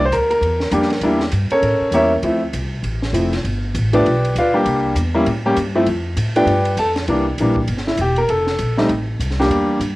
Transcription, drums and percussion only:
0.12 hi-hat pedal, ride
0.31 ride
0.42 ride
0.60 snare
0.71 hi-hat pedal, ride
0.82 snare
0.90 snare, ride
1.01 ride
1.20 snare
1.32 hi-hat pedal, ride
1.50 ride
1.63 ride
1.92 hi-hat pedal, ride
2.23 ride
2.53 hi-hat pedal, ride
2.84 ride
3.02 snare
3.14 hi-hat pedal, ride
3.33 snare, ride
3.45 ride
3.75 hi-hat pedal, ride
3.93 ride
4.06 ride
4.25 ride
4.36 hi-hat pedal, ride
4.66 ride
4.96 hi-hat pedal, ride
5.26 ride
5.57 hi-hat pedal, ride
5.87 ride
6.17 hi-hat pedal, ride
6.36 ride
6.47 ride
6.65 ride
6.77 hi-hat pedal, ride
6.96 snare, ride
7.08 ride
7.38 hi-hat pedal, ride
7.56 kick
7.68 ride
7.78 snare
7.88 snare
7.97 hi-hat pedal, ride
8.16 ride
8.29 ride
8.47 snare
8.59 hi-hat pedal, ride
8.78 snare
8.89 ride
9.20 hi-hat pedal, ride
9.31 snare
9.41 snare
9.51 ride
9.81 hi-hat pedal, ride

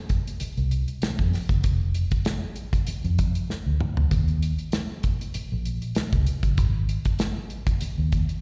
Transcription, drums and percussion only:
0.09 kick, closed hi-hat
0.27 closed hi-hat
0.40 closed hi-hat
0.57 closed hi-hat
0.71 closed hi-hat
0.88 closed hi-hat
1.02 snare, closed hi-hat
1.19 kick
1.33 snare, open hi-hat
1.49 kick, closed hi-hat
1.64 kick, closed hi-hat
1.94 closed hi-hat
2.11 kick, closed hi-hat
2.25 snare, closed hi-hat
2.56 closed hi-hat
2.73 kick, closed hi-hat
2.87 closed hi-hat
3.04 closed hi-hat
3.18 kick, closed hi-hat
3.35 closed hi-hat
3.50 snare
3.80 mid tom
3.97 floor tom
4.11 kick, closed hi-hat
4.28 closed hi-hat
4.43 closed hi-hat
4.59 closed hi-hat
4.72 snare, closed hi-hat
5.03 kick, closed hi-hat
5.21 closed hi-hat
5.34 closed hi-hat
5.65 closed hi-hat
5.82 closed hi-hat
5.95 snare, closed hi-hat
6.13 kick, closed hi-hat
6.27 closed hi-hat
6.43 kick, closed hi-hat
6.58 kick, closed hi-hat
6.89 closed hi-hat
7.05 kick, closed hi-hat
7.19 snare, closed hi-hat
7.50 closed hi-hat
7.67 kick, closed hi-hat
7.81 closed hi-hat
8.12 kick, closed hi-hat
8.29 closed hi-hat

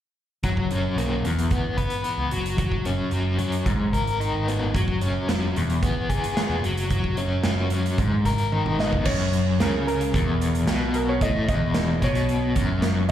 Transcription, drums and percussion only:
0.43 kick, closed hi-hat
0.57 kick
0.71 closed hi-hat
0.98 closed hi-hat
1.25 closed hi-hat
1.39 closed hi-hat
1.51 kick, closed hi-hat
1.78 kick, closed hi-hat
1.90 closed hi-hat
2.04 closed hi-hat
2.31 closed hi-hat
2.46 closed hi-hat
2.58 kick, closed hi-hat
2.72 kick
2.85 closed hi-hat
3.11 closed hi-hat
3.39 closed hi-hat
3.52 closed hi-hat
3.66 kick, closed hi-hat
3.93 kick, closed hi-hat
4.08 closed hi-hat
4.21 closed hi-hat
4.48 closed hi-hat
4.75 kick, closed hi-hat
4.88 kick
5.01 closed hi-hat
5.29 snare, closed hi-hat
5.56 closed hi-hat
5.70 closed hi-hat
5.83 kick, closed hi-hat
6.10 kick, closed hi-hat
6.24 closed hi-hat
6.37 snare, closed hi-hat
6.64 closed hi-hat
6.77 closed hi-hat
6.90 kick, closed hi-hat
7.04 kick
7.17 closed hi-hat
7.44 snare, closed hi-hat
7.70 closed hi-hat
7.86 closed hi-hat
7.98 kick, closed hi-hat
8.25 kick, closed hi-hat
8.38 closed hi-hat
8.52 high tom
8.66 mid tom
8.79 snare
8.93 kick
9.05 kick, crash
9.33 closed hi-hat
9.60 snare, closed hi-hat
9.88 closed hi-hat
10.01 closed hi-hat
10.14 kick, closed hi-hat
10.42 closed hi-hat
10.55 closed hi-hat
10.68 snare, closed hi-hat
10.94 closed hi-hat
11.21 kick, closed hi-hat
11.49 kick, closed hi-hat
11.74 snare, closed hi-hat
12.02 kick, closed hi-hat
12.15 closed hi-hat
12.29 closed hi-hat
12.56 kick, closed hi-hat
12.82 snare, closed hi-hat

